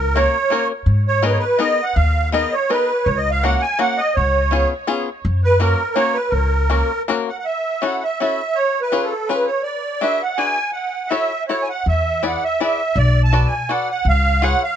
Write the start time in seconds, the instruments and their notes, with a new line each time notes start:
Already playing: upright bass C#2, accordion A#4
0.15 five-string banjo A#3 C#4 F#4 A#4, accordion C#5
0.50 five-string banjo A#3 C#4 F#4 A#4
0.86 upright bass G#2
1.08 accordion C#5
1.23 five-string banjo B3 D#4 G#4 A#4, accordion B4
1.30 accordion C#5
1.38 accordion B4
1.58 five-string banjo B3 D#4 G#4 A#4, accordion D#5
1.83 accordion F#5
1.95 upright bass D#2, accordion F5
2.32 five-string banjo B3 D#4 G#4 A#4, accordion D#5
2.52 accordion C#5
2.70 five-string banjo B3 D#4 G#4 A#4, accordion B4
3.04 upright bass C#2, accordion C#5
3.16 accordion D#5
3.31 accordion F5
3.43 five-string banjo A#3 C#4 F#4 A#4, accordion F#5
3.61 accordion G#5
3.79 five-string banjo A#3 C#4 F#4 A#4, accordion F#5
3.98 accordion D#5
4.15 upright bass C#2, accordion C#5
4.51 five-string banjo B3 C#4 F4 G#4
4.87 five-string banjo B3 C#4 F4 G#4
5.25 upright bass F#2
5.44 accordion B4
5.60 five-string banjo A#3 C#4 F#4 A#4, accordion A#4
5.95 five-string banjo A#3 C#4 F#4 A#4, accordion C#5
6.14 accordion B4
6.30 upright bass C#2, accordion A#4
6.70 five-string banjo A#3 C#4 F#4 A#4
7.08 five-string banjo A#3 C#4 F#4 A#4
7.29 accordion F#5
7.39 accordion F#5
7.45 accordion E5
7.82 five-string banjo C#4 E4 F#4 A4, accordion F#5
8.03 accordion E5
8.20 five-string banjo C#4 E4 F#4 A4, accordion E5
8.55 accordion C#5
8.81 accordion B4
8.92 five-string banjo C#4 F4 G#4 B4
9.04 accordion A4
9.27 five-string banjo C#4 F4 G#4 B4, accordion B4
9.46 accordion C#5
9.63 accordion D5
10.01 five-string banjo D4 F#4 G#4 B4, accordion E5
10.22 accordion F#5
10.37 five-string banjo D4 F#4 G#4 B4, accordion G#5
10.73 accordion F#5
11.08 five-string banjo E4 F#4 A4 C#5, accordion E5
11.48 five-string banjo E4 F#4 A4 C#5, accordion C#5
11.63 accordion G#5
11.69 accordion F#5
11.86 upright bass E2, accordion E5
12.23 five-string banjo E4 G#4 B4 D5, accordion F#5
12.44 accordion E5
12.60 five-string banjo E4 G#4 B4 D5, accordion E5
12.96 upright bass B1, accordion D5
13.24 accordion A5
13.33 five-string banjo F#4 A4 B4 D5
13.47 accordion G#5
13.69 five-string banjo F#4 A4 B4 D5, accordion F#5
13.90 accordion F#5
14.05 upright bass C#2, accordion F5
14.42 five-string banjo F4 G#4 B4 C#5, accordion F#5
14.64 accordion F5